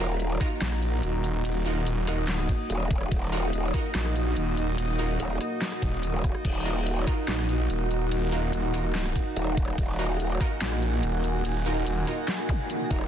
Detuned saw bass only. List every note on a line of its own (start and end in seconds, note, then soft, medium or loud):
0.61 1.01 A#1 loud
1.03 1.85 D#1 loud
1.86 2.29 D#1 loud
2.29 2.47 D1 loud
3.95 4.35 A#1 loud
4.37 5.18 D#1 loud
5.82 6.12 D#1 loud
7.28 7.68 A#1 loud
7.70 8.52 D#1 loud
8.53 9.14 D#1 loud
10.61 11.01 A#1 loud
11.03 11.85 D#1 loud
11.86 12.06 D#1 loud